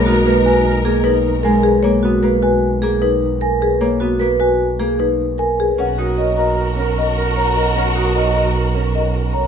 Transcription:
0.00 5.66 B1 medium
0.00 1.43 G#3 medium
0.00 0.24 A#3 loud
0.00 0.81 C#4 medium
0.00 1.60 D#4 medium
0.00 1.60 A#4 medium
0.00 0.12 C#5 medium
0.00 0.12 B5 medium
0.06 2.03 B3 medium
0.06 0.31 F#4 medium
0.06 0.20 A#4 medium
0.26 0.84 A#3 medium
0.26 0.40 A#4 medium
0.26 0.51 A#4 medium
0.26 0.51 B4 medium
0.45 0.71 F#4 medium
0.45 0.60 A#4 medium
0.45 0.71 B4 medium
0.45 0.71 G#5 medium
0.66 0.79 A#4 medium
0.84 1.83 A#3 medium
0.84 1.10 G#4 medium
0.84 1.10 G#4 loud
0.84 0.98 A#4 medium
1.04 1.30 D#4 medium
1.04 1.19 A#4 medium
1.04 1.30 B4 loud
1.25 1.39 A#4 medium
1.43 5.34 G#3 medium
1.43 1.69 A#4 medium
1.43 1.69 A#4 loud
1.43 1.58 A#4 soft
1.43 1.70 G#5 medium
1.63 1.89 G#4 loud
1.63 1.89 B4 medium
1.83 2.22 A#3 medium
1.83 2.09 C#5 medium
2.03 4.00 B3 medium
2.03 2.29 F#4 medium
2.23 2.82 A#3 medium
2.23 2.48 A#4 medium
2.23 2.49 B4 medium
2.42 2.68 F#4 medium
2.42 2.68 B4 medium
2.42 2.68 G#5 medium
2.82 3.80 A#3 medium
2.82 3.08 G#4 loud
2.82 3.08 G#4 medium
3.02 3.27 D#4 medium
3.02 3.27 B4 loud
3.41 3.67 A#4 loud
3.41 3.67 A#4 medium
3.41 3.67 G#5 medium
3.61 3.87 G#4 loud
3.61 3.87 B4 medium
3.81 4.19 A#3 medium
3.81 4.07 C#5 medium
4.00 5.80 B3 medium
4.00 4.26 F#4 medium
4.20 4.78 A#3 medium
4.20 4.46 A#4 medium
4.20 4.46 B4 loud
4.40 4.66 F#4 medium
4.40 4.66 B4 medium
4.40 4.66 G#5 medium
4.79 8.69 A#3 medium
4.79 5.05 G#4 medium
4.99 5.25 D#4 medium
4.99 5.25 B4 medium
5.38 5.64 A#4 medium
5.38 5.65 A#4 medium
5.38 5.64 G#5 medium
5.58 5.85 G#4 medium
5.58 5.84 B4 medium
5.78 9.47 B1 medium
5.78 6.75 C#4 medium
5.78 9.47 F#4 medium
5.78 5.92 A#4 soft
5.78 9.47 A#4 medium
5.78 6.04 F#5 medium
5.98 7.94 D#4 medium
5.98 6.24 F#4 medium
5.98 6.12 A#4 soft
6.18 6.31 A#4 medium
6.18 6.44 C#5 medium
6.18 6.43 D#5 medium
6.37 6.63 F#4 medium
6.37 6.51 A#4 medium
6.37 6.63 D#5 medium
6.37 6.63 A#5 medium
6.56 6.70 A#4 medium
6.76 7.74 C#4 medium
6.76 7.02 A#4 medium
6.76 6.91 A#4 medium
6.76 7.03 A#4 medium
6.96 7.10 A#4 medium
6.96 7.23 D#5 medium
7.17 7.31 A#4 medium
7.36 7.50 A#4 medium
7.36 7.62 C#5 medium
7.36 7.62 A#5 medium
7.56 7.70 A#4 medium
7.56 7.82 A#4 medium
7.56 7.81 D#5 medium
7.75 8.73 C#4 medium
7.75 7.89 A#4 medium
7.75 8.02 F#5 medium
7.95 9.47 D#4 medium
7.95 8.21 F#4 medium
7.95 8.09 A#4 medium
8.15 8.30 A#4 medium
8.15 8.41 C#5 medium
8.15 8.41 D#5 medium
8.35 8.60 F#4 medium
8.35 8.49 A#4 medium
8.35 8.61 D#5 medium
8.35 8.61 A#5 medium
8.55 8.69 A#4 medium
8.74 9.47 C#4 medium
8.74 9.00 A#4 medium
8.74 8.88 A#4 soft
8.95 9.08 A#4 soft
8.95 9.20 D#5 medium
9.14 9.28 A#4 soft
9.33 9.47 A#4 soft
9.33 9.47 C#5 medium
9.33 9.47 A#5 medium

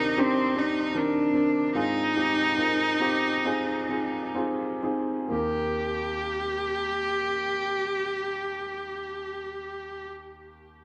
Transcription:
0.00 1.76 C3 soft
0.00 0.95 D#3 medium
0.00 0.17 C4 medium
0.00 0.17 D4 medium
0.00 0.15 D#4 soft
0.00 0.21 D#4 medium
0.00 0.18 G4 medium
0.00 0.15 A#4 medium
0.00 0.15 D5 soft
0.17 0.53 C4 medium
0.17 0.60 C4 medium
0.17 0.54 D4 medium
0.17 0.54 D#4 medium
0.17 0.54 G4 medium
0.55 0.92 C4 medium
0.55 0.93 D#4 soft
0.55 0.99 D#4 medium
0.55 0.93 G4 medium
0.55 0.93 D5 soft
0.94 1.32 D#3 medium
0.94 1.32 C4 medium
0.94 1.32 D4 soft
0.94 1.76 D4 medium
0.94 1.33 A#4 medium
1.33 1.73 D#3 soft
1.33 1.72 C4 medium
1.33 1.73 D4 soft
1.33 1.73 A#4 medium
1.74 2.97 G#2 soft
1.74 2.14 C4 medium
1.74 2.14 D#4 medium
1.74 4.33 D#4 medium
1.74 2.14 F4 medium
1.74 2.14 G#4 medium
2.16 2.56 C4 soft
2.16 2.56 D#4 soft
2.16 2.56 F4 soft
2.16 2.56 G4 medium
2.57 2.98 C4 soft
2.57 2.99 D#4 soft
2.57 2.99 F4 soft
2.57 2.99 A#4 medium
3.00 3.42 C4 medium
3.00 3.42 D#4 soft
3.00 3.43 F4 soft
3.00 3.43 G4 medium
3.45 3.88 C4 medium
3.45 3.88 D#4 medium
3.45 3.88 F4 medium
3.45 3.88 G#4 medium
3.89 4.33 C4 soft
3.89 4.34 D#4 soft
3.89 4.34 F4 soft
3.89 4.34 G#4 medium
4.35 4.81 C4 medium
4.35 4.81 D#4 soft
4.35 4.81 F4 medium
4.35 4.82 G#4 medium
4.83 5.30 C4 medium
4.83 5.29 D#4 soft
4.83 5.30 F4 soft
4.83 5.30 G#4 medium
5.28 10.12 D#2 soft
5.28 10.09 A#3 medium
5.28 10.11 D#4 soft
5.32 10.13 G4 soft
5.32 10.08 G4 medium
5.32 10.15 A#4 medium

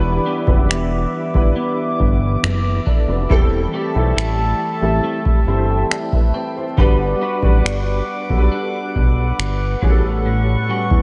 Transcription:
0.00 0.19 E1 loud
0.00 3.30 E3 medium
0.00 0.26 G3 medium
0.00 0.40 G3 loud
0.00 0.40 B3 medium
0.00 0.41 D4 medium
0.00 0.41 E4 medium
0.00 0.41 B4 loud
0.00 3.26 B4 medium
0.00 3.27 E5 medium
0.00 3.26 D6 medium
0.26 0.68 B3 medium
0.26 2.85 D4 medium
0.26 3.74 G4 medium
0.46 0.71 F#1 medium
0.46 1.24 G3 medium
0.46 1.25 B3 medium
0.46 1.25 D4 medium
0.46 1.25 E4 medium
0.46 1.25 B4 medium
0.46 kick medium
0.69 1.06 E1 medium
0.69 1.55 B3 medium
0.69 finger snap loud
1.33 1.53 G1 medium
1.33 2.89 G3 medium
1.33 2.90 B3 medium
1.33 2.90 D4 medium
1.33 2.90 E4 medium
1.33 2.42 B4 medium
1.33 kick medium
1.56 3.39 B3 medium
2.00 2.37 G1 loud
2.00 kick medium
2.43 2.80 F#1 medium
2.43 2.85 B4 medium
2.43 2.84 E5 medium
2.43 finger snap loud
2.86 3.39 D4 medium
2.86 3.08 A4 medium
2.86 3.07 D5 medium
2.86 kick medium
3.08 3.27 F1 medium
3.08 3.50 F#4 medium
3.08 3.50 B4 medium
3.29 3.67 E1 loud
3.29 6.78 E3 medium
3.29 3.88 G3 loud
3.29 3.88 A3 medium
3.29 3.88 C4 medium
3.29 3.88 E4 medium
3.29 6.74 A4 medium
3.29 3.89 A4 loud
3.29 6.74 E5 medium
3.29 6.74 A5 medium
3.29 kick loud
3.73 4.16 A3 medium
3.73 6.33 C4 medium
3.73 7.22 G4 medium
3.94 4.14 B1 medium
3.94 4.72 G3 medium
3.94 4.73 A3 medium
3.94 4.73 C4 medium
3.94 4.73 E4 medium
3.94 4.74 A4 medium
4.17 4.54 A1 loud
4.17 5.03 A3 medium
4.17 finger snap loud
4.81 5.00 A1 medium
4.81 5.40 G3 medium
4.81 5.40 A3 medium
4.81 5.41 C4 medium
4.81 5.41 E4 medium
4.81 5.41 A4 medium
5.04 6.78 A3 medium
5.25 kick medium
5.46 5.84 G1 medium
5.46 6.63 G3 medium
5.46 6.64 A3 medium
5.46 6.64 C4 medium
5.46 6.64 E4 medium
5.46 5.91 C5 medium
5.46 5.68 E5 medium
5.70 5.89 G5 medium
5.91 6.12 D5 medium
5.91 6.11 G5 medium
5.91 6.31 A5 medium
5.91 finger snap loud
6.12 6.54 B4 medium
6.12 6.54 E5 medium
6.12 kick medium
6.34 6.86 C4 medium
6.34 6.74 G5 medium
6.56 6.97 G4 medium
6.56 6.97 C5 medium
6.76 7.15 G1 loud
6.76 7.35 G3 loud
6.76 10.29 G3 medium
6.76 7.36 B3 medium
6.76 7.36 D4 medium
6.76 7.36 F#4 medium
6.76 11.02 B4 medium
6.76 7.36 B4 loud
6.76 11.02 F#5 medium
6.76 9.79 D6 medium
6.76 kick loud
7.22 7.63 D4 medium
7.22 10.70 F#4 medium
7.22 10.29 B4 medium
7.42 7.61 A1 medium
7.42 8.20 G3 medium
7.42 8.20 B3 medium
7.42 8.21 D4 medium
7.42 8.21 F#4 medium
7.42 8.21 B4 medium
7.42 kick medium
7.64 8.02 G1 medium
7.64 8.51 D4 medium
7.64 finger snap loud
8.29 8.48 B1 medium
8.29 9.80 G3 medium
8.29 9.80 B3 medium
8.29 9.82 D4 medium
8.29 9.81 F#4 medium
8.29 8.37 A4 medium
8.29 kick medium
8.37 9.86 B4 medium
8.52 9.91 D4 medium
8.95 9.32 B1 medium
8.95 kick medium
9.39 9.76 G1 medium
9.39 finger snap loud
9.81 10.56 A1 loud
9.81 10.24 A2 medium
9.81 10.79 G3 medium
9.81 10.79 B3 medium
9.81 10.79 C#4 medium
9.81 10.69 F#4 medium
9.81 9.89 G#4 medium
9.81 11.02 C#6 medium
9.81 kick loud
9.90 10.73 A4 medium
10.26 11.02 A2 medium
10.69 11.02 G3 medium
10.69 11.02 C#4 medium
10.69 11.02 F#4 medium
10.91 11.02 E2 medium
10.91 kick medium

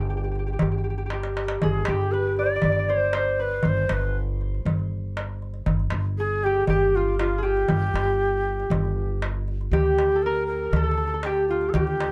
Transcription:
0.00 0.57 G1 medium
0.00 0.09 G4 soft
0.00 0.28 C5 medium
0.10 0.16 G4 soft
0.17 0.24 G4 soft
0.23 0.31 G4 soft
0.23 darbuka ka soft
0.31 0.39 G4 soft
0.31 darbuka ka soft
0.39 0.46 G4 soft
0.47 0.53 G4 soft
0.47 darbuka ka soft
0.53 0.61 G4 soft
0.59 1.58 G1 medium
0.59 0.71 G4 soft
0.59 darbuka dum medium
0.72 0.77 G4 medium
0.72 darbuka ka soft
0.78 0.83 G4 soft
0.84 0.90 G4 soft
0.90 0.97 G4 soft
0.98 1.05 G4 medium
1.06 1.13 G4 soft
1.10 1.69 G4 medium
1.10 darbuka tek medium
1.23 darbuka ka medium
1.37 darbuka tek medium
1.48 darbuka ka medium
1.62 1.86 G1 medium
1.62 1.95 G#4 medium
1.62 1.88 G#4 medium
1.62 darbuka dum medium
1.74 darbuka ka soft
1.85 2.60 G1 medium
1.85 2.13 G4 medium
1.85 4.25 G4 medium
1.85 darbuka tek medium
2.12 2.37 B4 medium
2.12 2.95 B4 medium
2.37 2.90 D5 medium
2.37 2.45 D5 medium
2.37 darbuka ka soft
2.46 2.55 D5 medium
2.50 darbuka ka soft
2.56 2.64 D5 medium
2.62 3.61 G1 medium
2.62 2.71 D5 medium
2.62 darbuka dum medium
2.72 2.79 D5 medium
2.76 4.64 D5 medium
2.76 darbuka ka soft
2.89 3.14 C5 medium
3.13 3.45 C5 medium
3.13 3.43 C5 medium
3.13 darbuka tek medium
3.39 3.69 B4 medium
3.39 3.70 B4 medium
3.51 darbuka ka soft
3.63 3.88 G1 medium
3.63 5.61 C5 medium
3.63 darbuka dum medium
3.68 3.94 C5 medium
3.77 darbuka ka soft
3.89 4.62 G1 medium
3.89 4.17 B4 medium
3.89 darbuka tek medium
4.41 darbuka ka soft
4.54 darbuka ka soft
4.65 5.63 G1 medium
4.65 darbuka dum medium
4.79 darbuka ka soft
5.17 darbuka tek medium
5.42 darbuka ka soft
5.54 darbuka ka soft
5.66 5.90 G1 medium
5.66 darbuka dum medium
5.80 darbuka ka soft
5.90 6.64 G1 medium
5.90 darbuka tek medium
6.18 6.46 G#4 medium
6.18 6.52 G#4 medium
6.42 6.67 G4 medium
6.42 6.69 G4 medium
6.42 darbuka ka soft
6.54 darbuka ka soft
6.67 7.65 G1 medium
6.67 6.97 G4 medium
6.67 7.42 G4 medium
6.67 darbuka dum medium
6.81 darbuka ka soft
6.96 7.18 F4 medium
6.96 7.20 F4 medium
7.19 7.47 F4 medium
7.19 9.73 F4 medium
7.19 darbuka tek medium
7.38 7.49 G#4 medium
7.43 9.73 G4 medium
7.43 9.22 G4 medium
7.43 darbuka ka soft
7.57 darbuka ka soft
7.68 7.93 G1 medium
7.68 darbuka dum medium
7.82 darbuka ka soft
7.94 8.66 G1 medium
7.94 darbuka tek medium
8.09 darbuka ka soft
8.60 darbuka ka soft
8.70 9.67 G1 medium
8.70 darbuka dum medium
8.85 darbuka ka soft
9.22 darbuka tek medium
9.48 darbuka ka soft
9.61 darbuka ka soft
9.71 10.69 D2 medium
9.71 10.24 G4 medium
9.71 11.26 G4 medium
9.71 darbuka dum medium
9.86 darbuka ka soft
9.98 darbuka tek medium
10.12 10.32 A4 medium
10.12 darbuka ka soft
10.23 10.46 A#4 medium
10.23 10.82 A#4 medium
10.36 darbuka ka soft
10.47 10.75 A#4 medium
10.47 darbuka ka soft
10.73 11.70 D2 medium
10.73 11.27 A4 medium
10.73 10.83 A4 medium
10.73 darbuka dum medium
10.83 10.91 A4 medium
10.91 10.97 A4 medium
10.97 11.07 A4 medium
11.07 11.13 A4 medium
11.14 12.12 A4 medium
11.23 11.48 G4 medium
11.23 11.75 G4 medium
11.23 darbuka tek medium
11.48 11.71 F4 medium
11.48 12.12 F4 medium
11.48 darbuka ka soft
11.61 darbuka ka soft
11.69 11.75 A4 soft
11.73 12.12 D2 loud
11.73 12.12 G4 medium
11.73 darbuka dum medium
11.87 darbuka ka soft
12.00 darbuka tek medium

